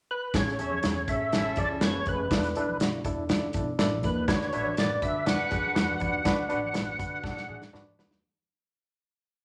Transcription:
0.11 tonewheel organ B4
0.34 upright bass A1, reed electric piano C#4 G#4 A4, tonewheel organ C#5, kick, snare, closed hi-hat, muted conga, low conga
0.47 snare
0.58 upright bass E2, reed electric piano C#4 G#4 A4, horn section A4 C#5 E5, closed hi-hat
0.72 high conga
0.83 upright bass E2, horn section C#4 A4 C#5, reed electric piano C#4 G#4 A4, snare, closed hi-hat
0.96 muted conga
1.08 upright bass A2, reed electric piano C#4 G#4 A4, horn section C#4 A4 C#5, tonewheel organ E5, kick, closed hi-hat
1.32 upright bass A1, reed electric piano C#4 G#4 A4, horn section C#4 E4 A4, snare, closed hi-hat, low conga
1.56 upright bass C#2, reed electric piano C#4 G#4 A4, tonewheel organ D5, kick, closed hi-hat, high conga
1.81 upright bass F#1, reed electric piano C#4 G#4 B4, tonewheel organ C#5, snare, closed hi-hat
1.95 high conga
2.06 upright bass F1, reed electric piano C#4 G#4 A4, tonewheel organ B4, kick, closed hi-hat, high conga
2.31 upright bass E1, reed electric piano D4 E4 A4, kick, snare, closed hi-hat, muted conga, low conga
2.43 snare, closed hi-hat
2.55 upright bass B1, reed electric piano D4 E4 A4, closed hi-hat
2.68 high conga
2.80 upright bass B1, reed electric piano D4 E4 F#4, snare, closed hi-hat
3.04 upright bass E2, reed electric piano D4 E4 A4, kick, closed hi-hat
3.29 upright bass C#2, reed electric piano D4 E4 A4, snare, closed hi-hat, low conga
3.42 muted conga
3.53 upright bass B1, reed electric piano D4 E4 A4, kick, closed hi-hat, high conga
3.78 upright bass A1, reed electric piano D4 E4 A4, snare, closed hi-hat, muted conga
3.92 muted conga, high conga
4.03 upright bass D#2, reed electric piano D4 E4 A4, tonewheel organ B4, kick, closed hi-hat, high conga
4.28 upright bass D2, reed electric piano D4 F#4 B4, tonewheel organ C#5, kick, snare, closed hi-hat, low conga
4.41 snare, muted conga
4.53 upright bass A1, reed electric piano D4 F#4 B4, horn section A4 C#5 E5, closed hi-hat
4.66 high conga
4.77 upright bass A1, reed electric piano D4 F#4 B4, horn section A4 B4 D5, tonewheel organ D5, snare, closed hi-hat
4.90 muted conga
5.01 upright bass D3, reed electric piano D4 F#4 B4, horn section A4 B4 D5, tonewheel organ E5, kick, closed hi-hat
5.26 horn section D4 F#4 B4, reed electric piano D4 F#4 D5, tonewheel organ F#5, snare, closed hi-hat, muted conga, low conga
5.51 upright bass D2, reed electric piano D4 F#4 G#4, kick, closed hi-hat, high conga
5.64 upright bass F#2
5.75 upright bass E2, reed electric piano D4 F#4 B4, snare, closed hi-hat
5.90 muted conga, high conga
6.00 upright bass D#2, reed electric piano D4 F#4 B4, kick, closed hi-hat, high conga
6.25 upright bass D2, reed electric piano D4 F#4 B4, kick, snare, closed hi-hat, muted conga, low conga
6.38 muted conga
6.49 upright bass A1, reed electric piano D4 F#4 B4, closed hi-hat
6.64 high conga
6.74 upright bass A1, reed electric piano D4 F#4 B4, snare, closed hi-hat
6.88 muted conga
6.99 upright bass D3, reed electric piano D4 F#4 B4, kick, closed hi-hat
7.23 upright bass B2, reed electric piano D4 F#4 A4, kick, snare, low conga
7.37 snare, muted conga
7.48 upright bass A2, reed electric piano D4 F#4 G#4, high conga
7.62 snare
7.73 upright bass G#2, reed electric piano D4 F#4 B4, snare
7.87 high conga
7.99 reed electric piano D4 F#4 B4, snare, high conga
8.11 snare

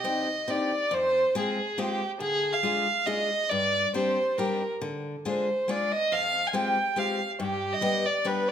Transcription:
Already playing: fiddle D#5
0.04 steel-string acoustic guitar C4 D4 D#4 G4
0.48 steel-string acoustic guitar C4 D4 D#4 G4, fiddle D5
0.91 steel-string acoustic guitar F2, fiddle C5
1.35 steel-string acoustic guitar G#3 C4 F4 G#4, fiddle G#4
1.78 steel-string acoustic guitar G#3 C4 F4 G#4, fiddle G4
2.20 steel-string acoustic guitar D3, fiddle G#4
2.53 fiddle F5
2.63 steel-string acoustic guitar G#3 D4 F4 G#4
3.06 steel-string acoustic guitar G#3 D4 F4 G#4, fiddle D#5
3.49 steel-string acoustic guitar G2, fiddle D5
3.94 steel-string acoustic guitar G3 C4 D4 G4, fiddle C5
4.38 steel-string acoustic guitar G3 C4 D4 G4, fiddle A#4
4.81 steel-string acoustic guitar D3
5.25 steel-string acoustic guitar G#3 D4 F4 G#4, fiddle C5
5.68 steel-string acoustic guitar G#3 D4 F4 G#4, fiddle D5
5.92 fiddle D#5
6.12 steel-string acoustic guitar F2, fiddle F5
6.47 fiddle G#5
6.53 steel-string acoustic guitar G#3 C4 F4 G4, fiddle G5
6.96 steel-string acoustic guitar G#3 C4 F4 G4, fiddle F5
7.40 steel-string acoustic guitar G2, fiddle G4
7.73 fiddle D#5
7.81 steel-string acoustic guitar G3 B3 D4 G4
8.05 fiddle D5
8.25 steel-string acoustic guitar G3 B3 D4 G4, fiddle B4
8.48 fiddle D5

